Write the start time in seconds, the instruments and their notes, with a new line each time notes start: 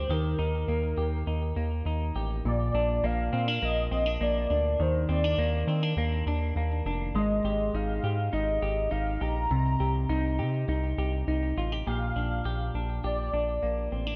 Already playing: clean electric guitar A#3 D4 G4, soft synth lead C5
0.09 analog synth bass D#2, clean electric guitar D#3 G4
0.13 soft synth lead A#4
0.39 analog synth bass D#2, clean electric guitar D#4
0.68 analog synth bass D#2, clean electric guitar A#3
0.97 analog synth bass D#2, clean electric guitar G4
1.27 analog synth bass D#2, clean electric guitar D#4
1.56 analog synth bass D#2, clean electric guitar A#3
1.85 analog synth bass D#2, clean electric guitar D#4
2.15 analog synth bass A1, clean electric guitar G4
2.45 analog synth bass A#1, clean electric guitar A#2, soft synth lead D5
2.74 analog synth bass A#1, clean electric guitar D4
3.03 analog synth bass A#1, clean electric guitar A#3, soft synth lead F5
3.33 analog synth bass A#2, clean electric guitar C4
3.48 clean electric guitar D4
3.62 analog synth bass A#1, clean electric guitar A#3, soft synth lead D#5
3.91 analog synth bass A#1, clean electric guitar C4
4.06 clean electric guitar D4
4.20 analog synth bass A#1, clean electric guitar A#3, soft synth lead D5
4.50 analog synth bass D2, clean electric guitar D4
4.80 analog synth bass D#2, clean electric guitar D#3, soft synth lead C5
5.09 analog synth bass D#2, clean electric guitar C4, soft synth lead D5
5.24 clean electric guitar D4
5.38 analog synth bass D#2, clean electric guitar A#3
5.67 analog synth bass D#3, clean electric guitar C4
5.83 clean electric guitar D4
5.97 analog synth bass D#2, clean electric guitar A#3
6.26 analog synth bass D#2, clean electric guitar D4
6.56 analog synth bass D#2, clean electric guitar A#3
6.85 analog synth bass F1, clean electric guitar D4
7.14 analog synth bass G#1, clean electric guitar G#3, soft synth lead D#5
7.44 analog synth bass G#1, clean electric guitar G4
7.74 analog synth bass G#1, clean electric guitar D#4, soft synth lead F5
8.03 analog synth bass G#2, clean electric guitar G4
8.33 analog synth bass G#1, clean electric guitar D#4, soft synth lead D#5
8.62 analog synth bass G#1, clean electric guitar G4
8.91 analog synth bass G#1, clean electric guitar D#4, soft synth lead F5
9.21 analog synth bass A#1, clean electric guitar G4, soft synth lead A#5
9.50 analog synth bass C2, clean electric guitar C3
9.80 analog synth bass C2, clean electric guitar G4
10.09 analog synth bass C2, clean electric guitar D#4
10.39 analog synth bass C3, clean electric guitar G4
10.68 analog synth bass C2, clean electric guitar D#4
10.98 analog synth bass C2, clean electric guitar G4
11.27 analog synth bass C2, clean electric guitar D#4
11.57 analog synth bass A1, clean electric guitar F4
11.72 clean electric guitar G4
11.86 analog synth bass A#1, clean electric guitar A#2 G4, soft synth lead F5
12.16 analog synth bass A#1, clean electric guitar D4
12.45 analog synth bass A#1, clean electric guitar G4
12.74 analog synth bass A#1, clean electric guitar D4
13.04 analog synth bass A#1, clean electric guitar G4, soft synth lead D5
13.33 analog synth bass A#1, clean electric guitar D4
13.63 analog synth bass A#1, clean electric guitar A#3
13.92 analog synth bass A1, clean electric guitar C4
14.07 clean electric guitar D4